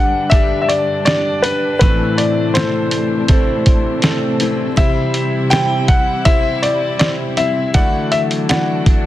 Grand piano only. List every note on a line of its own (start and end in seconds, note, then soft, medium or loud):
0.00 0.32 F#5 medium
0.30 0.60 E5 medium
0.62 0.69 E5 medium
0.68 1.04 D5 medium
1.05 1.45 D5 medium
1.42 1.78 B4 medium
1.79 2.19 B4 medium
2.18 2.53 D5 medium
2.54 4.36 C5 medium
4.78 5.54 E5 medium
5.50 5.89 G5 loud
5.88 6.27 F#5 loud
6.25 6.64 E5 loud
6.62 6.98 D5 medium
6.99 7.08 D5 medium
7.37 7.76 E5 medium
7.74 8.13 F#5 medium
8.12 8.20 E5 medium
8.49 9.06 F#5 medium